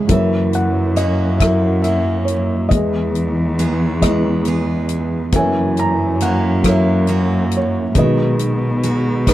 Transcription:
Already playing: G#3 C#4 E4 G#4 C#5
0.07 F#1 F#2 E3 F#3 E4 A#4 E5, kick, closed hi-hat
0.13 A#4 C#5
0.53 F#5, closed hi-hat
0.96 A#3 C#4 F#4 D#5, closed hi-hat
1.38 F#3 A#3 E4 A#4 E5, kick, cross-stick, closed hi-hat
1.82 A#3 C#4 F#4 E5, closed hi-hat
2.25 C#5, closed hi-hat
2.68 E2 E3 G#3 E4 D#5, kick, closed hi-hat
2.75 G#4 B4
3.15 closed hi-hat
3.59 B3 G#4, closed hi-hat
4.01 G#3 B3 E4 D#5, kick, cross-stick, closed hi-hat
4.45 B3 G#4, closed hi-hat
4.89 closed hi-hat
5.32 F#1 F#2 E3 F#3 E4 A#4 G#5, kick, closed hi-hat
5.36 C#5 E5
5.77 A#5, closed hi-hat
6.20 A#3 C#4 F#4 F#5, closed hi-hat
6.63 F#3 A#3 E4 A#4, kick, cross-stick, closed hi-hat
6.68 C#5 E5
7.07 A#3 C#4 F#4, closed hi-hat
7.51 closed hi-hat
7.57 C#5
7.94 B1 B2 D#3 G#3 D#4 F#4 B4, kick, closed hi-hat
7.98 G#4 D#5
8.39 closed hi-hat
8.83 G#3 D#4 F#4, closed hi-hat
9.26 G#3 D#4 B4, kick, cross-stick, closed hi-hat

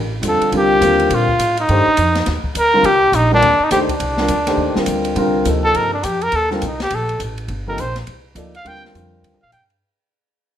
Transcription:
Already playing: A1
0.22 E2 D3 G3 C4 F4 A4, hi-hat pedal, ride
0.28 A4
0.41 muted upright bass stroke, ride
0.52 C2 D3 G3 C4 F4 A#4, ride
0.57 G4
0.81 D#2 D3 G3 C4 F4 A#4, hi-hat pedal, ride
1.00 ride
1.10 A#2, ride
1.14 F4
1.28 kick
1.39 A2, hi-hat pedal, ride
1.57 D#4, ride
1.69 G2 D#3 A3 D4 G4 C5, ride
1.87 muted upright bass stroke
1.97 F2, hi-hat pedal, ride
2.15 snare, ride
2.26 D#2, snare, ride
2.44 muted upright bass stroke, kick
2.55 D2 A#4, hi-hat pedal, ride
2.74 D3 G3 C4 F4 A#4
2.83 C2 G4, ride
3.12 A#1 D#4, hi-hat pedal, ride
3.31 D3 G3 C4 D4 F4 A#4
3.41 D#2, ride
3.59 muted upright bass stroke
3.64 D#4
3.71 D2 D#3 A3 D4 G4 C5, snare, hi-hat pedal, ride
3.89 D4, kick, ride
4.00 C2, ride
4.17 D3 G3 C4 F4 A#4, snare
4.28 D2, hi-hat pedal, ride
4.47 D#3 A3 D4 G4 C5, snare, ride
4.57 D#2
4.75 D3 G3 C4 F4 A#4, muted upright bass stroke, snare
4.86 D2, hi-hat pedal, ride
5.05 ride
5.16 C2 D3 G3 C4 F4 A#4, ride
5.45 D2 C3 F3 A#3 D#4 A4, hi-hat pedal, ride
5.64 A4
5.74 G2 A#4, ride
5.93 D4
6.03 F2 G4, hi-hat pedal, ride
6.21 A#4, ride
6.32 D#2 A4, ride
6.51 D3 G3 C4 F4 A#4, snare
6.62 C2 D#4, hi-hat pedal, ride
6.80 G4, snare, ride
6.90 A#1, ride
6.95 A4
7.09 ride
7.20 A1, hi-hat pedal, ride
7.38 ride
7.48 G1, ride
7.67 C3 F3 A#3 D#4 A4 A#4
7.78 A#1 C5, hi-hat pedal, ride
7.96 snare, ride
8.07 C2, ride
8.35 D2 F3 A#3 D#4 A4 D5, hi-hat pedal, ride
8.55 F5, ride
8.64 D#2 D3 G3 C4 F4 A#4 G5, ride
8.75 snare
8.85 snare
8.93 F2 D3 G3 C4 F4 A#4, hi-hat pedal, ride
9.22 D#2, ride
9.33 C2
9.42 A#1 F5
9.52 G2 G5, hi-hat pedal, ride
9.70 ride

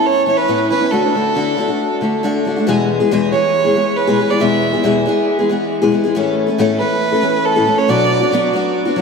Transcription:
Already playing: B3 C#4 E4
0.06 C#5
0.26 E3 B3 C#4 E4 C#5
0.37 B4
0.48 A2 E3 B3 C#4 E4
0.70 E3 B3 C#4 E4 B4
0.80 B3 C#4 E4
0.91 D3 A3 D4 F#4 A4
1.02 A3 D4 F#4
1.14 D3 A3 D4 F#4
1.35 D3 A3 D4 F#4
1.57 D3 A3 D4 F#4
1.68 A3 D4 F#4
2.01 D3 A3 D4 F#4
2.23 D3 A3 D4 F#4
2.45 D3 A3 D4 F#4
2.56 A3 D4 F#4
2.67 E2 B2 E3 G#3 B3 G#4
3.00 E3 G#3 B3 G#4
3.11 E2 B2 E3 G#3 B3 G#4
3.32 E3 G#3 B3 G#4 C#5
3.65 E3 G#3 B3 G#4
3.75 E3 G#3 B3 G#4
3.96 B4
4.07 E2 B2 E3 G#3 B3 G#4
4.19 E3 G#3 B3 G#4
4.30 E3 G#3 B3 G#4 D5
4.40 E2 B2 E3 G#3 B3 G#4 E5
4.73 E3 G#3 B3 G#4
4.83 E2 B2 E3 G#3 B3 G#4
5.06 E3 G#3 B3 G#4
5.39 E3 G#3 B3 G#4
5.49 E3 G#3 B3 G#4
5.82 E2 B2 E3 G#3 B3 G#4
5.92 E3 G#3 B3 G#4
6.04 E3 G#3 B3 G#4
6.15 A2 E3 A3 C#4 A4
6.47 A3 C#4 A4
6.58 A2 E3 A3 C#4 A4
6.79 E3 A3 C#4 A4 B4
7.12 A3 C#4 A4
7.22 E3 A3 C#4 A4
7.45 A4
7.56 A2 E3 A3 C#4 A4
7.66 E3 A3 C#4 A4
7.77 A3 C#4 A4 C#5
7.88 B2 F#3 B3 D4 F#4 D5
8.20 B3 D4 F#4
8.32 B2 F#3 B3 D4 F#4
8.53 F#3 B3 D4 F#4
8.85 B3 D4 F#4
8.96 F#3 B3 D4

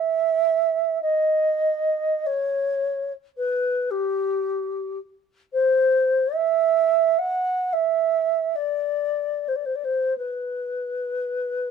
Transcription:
Already playing: E5
1.02 D#5
2.26 C#5
3.37 B4
3.90 G4
5.53 C5
6.34 E5
7.18 F#5
7.73 E5
8.55 D5
9.48 C5
9.55 D5
9.65 C5
9.75 D5
9.84 C5
10.17 B4

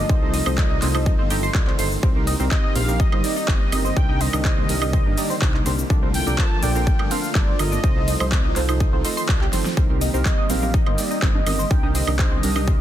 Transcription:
Already playing: F3 F4 D#5
0.09 C2 D#3 A3 C4 D#4 F4 A4 C5, kick, shaker
0.22 D#4 F4 A4 C5
0.34 D#4 D#5, open hi-hat, shaker
0.46 C2 C4 D#4 F4 A4 C5, high woodblock, shaker
0.58 F4 D5, kick, clap, shaker
0.70 D#4 D#5
0.82 C2 C4 D#4 F4 A4 C5, clap, open hi-hat, shaker
0.95 D#4 F4 A4 C5, high woodblock, shaker
1.06 D#4 D#5, kick, shaker
1.19 G1 C4 D#4 F4 A4 C5
1.30 D#4 F4 G4 A4 D#5 G5, open hi-hat, shaker
1.43 C5 C6, shaker
1.55 C2 D#4 F4 A4 D5, kick, clap, shaker
1.67 C4 C5, clap
1.79 G1 D#4 F4 A4 C5 C6, open hi-hat, shaker
1.92 shaker
2.03 C2 G3 A#3 C4 D#4 G4 A#4 C5, kick, shaker
2.15 C4 D#4 G4 A#4
2.27 D#4 D#5, open hi-hat, shaker
2.40 C2 C4 D#4 G4 A#4 C5, shaker
2.51 D#5, kick, clap, shaker
2.64 D#4 D#5
2.75 A#1 C4 D#4 G4 A#4 C5 F5, open hi-hat, shaker
2.88 C4 D#4 G4 A#4, shaker
3.00 C4 D#4 D#5, kick, shaker
3.12 G1 C4 D#4 G4 A#4 C5, high woodblock
3.24 C4 D#4 G4 D5, open hi-hat, shaker
3.36 D#4 D#5, shaker
3.48 G1 C4 D#4 G4 C5 D#5, kick, clap, shaker
3.72 G1 C4 D#4 G4 A#4 D#5, open hi-hat, high woodblock, shaker
3.85 C4 C5, shaker
3.96 C2 D3 D#3 D4 D#4 G4 A#4 G5, kick, shaker
4.09 D4 D#4 G4 A#4 D#5
4.21 C4 C5 D#5, open hi-hat, shaker
4.33 C2 D4 D#4 G4 A#4, high woodblock, shaker
4.45 D4 D#4 G4 C5 D#5, kick, clap, shaker
4.57 C4 C5
4.69 C2 D4 D#4 G4 A#4, open hi-hat, shaker
4.82 D4 D#4 G4 A#4 D#5, high woodblock, shaker
4.93 C4 D4 D#4 A#4 C5, kick, shaker
5.06 G1 D4 D#4 G4 A#4
5.17 D4 D#4 G4 D5 D#5, open hi-hat, shaker
5.30 C4 C5, shaker
5.42 C2 D4 D#4 G4 C5, kick, clap, shaker
5.54 D#4 D#5, clap
5.66 C2 C4 D4 D#4 G4 A#4 C5, open hi-hat, shaker
5.79 shaker
5.90 C2 D3 F3 A3 D4 F4 A4 A#4 D5, kick, shaker
6.03 C4 D4 F4 A4 A#4 C5
6.14 G5, open hi-hat, shaker
6.27 C2 D4 F4 A4 A#4 D5, shaker
6.38 C4 C5 A5, kick, clap, shaker
6.63 A#1 D4 F4 A4 A#4 D5 G5, open hi-hat, shaker
6.75 C4 D4 F4 A4 A#4 C5, shaker
6.87 kick, shaker
6.99 G1 D4 F4 A4 A#4 D5, high woodblock
7.11 C4 D4 F4 A4 A#4 C5 F5, open hi-hat, shaker
7.24 shaker
7.35 G1 D4 F4 A4 A#4 D5, kick, clap, shaker
7.48 C4 C5
7.59 G1 D4 F4 A4 A#4 D#5, open hi-hat, high woodblock, shaker
7.72 D4 D5, shaker
7.84 C2 D#3 F3 C4 D#4 F4 A4 C5, kick, shaker
7.96 D#4 F4 A4 C5
8.08 D#4 D#5, open hi-hat, shaker
8.20 C2 C4 D#4 F4 A4 C5, high woodblock, shaker
8.32 D#4, kick, clap, shaker
8.45 D#4 D#5
8.56 C2 C4 D#4 F4 A4 C5, clap, open hi-hat, shaker
8.69 D#4 F4 A4 C5, high woodblock, shaker
8.80 D#4 F4 D#5, kick, shaker
8.93 C2 C4 D#4 F4 A4 C5
9.05 D#4 F4 A4 C5 D#5 C6, open hi-hat, shaker
9.17 C5 C6, shaker
9.29 C2 D#4 F4 A4 D5, kick, clap, shaker
9.41 G4 G5, clap
9.53 G1 C4 D#4 F4 A4 C5, snare, open hi-hat, shaker
9.66 snare, shaker
9.77 C2 D#3 G3 A#3 C4 D#4 G4 A#4 C5, kick, shaker
9.90 C4 D#4 G4 A#4
10.01 D#4 D#5, open hi-hat, shaker
10.14 C2 C4 D#4 G4 A#4 C5, shaker
10.25 D#5, kick, clap, low conga, shaker
10.38 D#4 D#5
10.50 A#1 C4 D#4 G4 A#4 C5 F5, open hi-hat, low conga, shaker
10.62 C4 D#4 G4 A#4, low conga, shaker
10.74 C4 D#4 G4 A#4 D#5, kick, shaker
10.86 G1 C4 D#4 G4 A#4 C5, high woodblock
10.98 C4 D#4 G4 D5, open hi-hat, shaker
11.11 D#4 D#5, shaker
11.22 G1 C4 D#4 G4 C5 D#5, kick, clap, shaker
11.35 high conga
11.46 G1 C4 D#4 G4 A#4 D#5, open hi-hat, high woodblock, shaker
11.59 C4 C5, shaker
11.71 C2 D3 A#3 D4 D#4 G4 A#4 G5, kick, shaker
11.83 D4 D#4 G4 A#4 D#5, high conga
11.95 C4 C5 D#5, open hi-hat, shaker
12.07 C2 D4 D#4 G4 A#4, high woodblock, shaker
12.19 D4 D#4 G4 C5 D#5, kick, clap, shaker
12.32 C4 C5
12.43 C2 D4 D#4 G4 A#4, open hi-hat, low conga, shaker
12.56 D4 D#4 G4 A#4 D#5, high conga, low conga, high woodblock, shaker
12.67 C4 D4 D#4 G4 A#4 C5, kick, shaker

